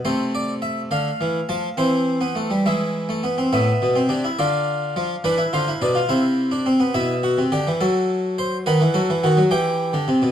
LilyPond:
<<
  \new Staff \with { instrumentName = "Harpsichord" } { \time 6/8 \key a \minor \tempo 4. = 70 << { c''8 d''8 e''8 f''4 a''8 | c''4. e''4. | e''4. d''4. | b'8 c''8 d''8 c''4. |
e''2. | fis''4. g''4. | } \\ { a2. | c'8. b16 a16 g16 gis8. a16 b16 c'16 | b8. c'16 d'16 e'16 f'4. | d'16 e'16 f'16 e'16 d'16 f'16 e'8. d'16 c'16 b16 |
e'8 fis'8 g'8 a'4 c''8 | b'8 a'8 fis'8 g'4. | } >> }
  \new Staff \with { instrumentName = "Harpsichord" } { \clef bass \time 6/8 \key a \minor c4. d8 e8 f8 | e4. e4. | a,8 b,8 c8 d4 f8 | e8 d8 b,8 c4. |
b,8. c16 d16 e16 fis4. | dis16 e16 fis16 e16 dis16 fis16 e8. d16 c16 b,16 | }
>>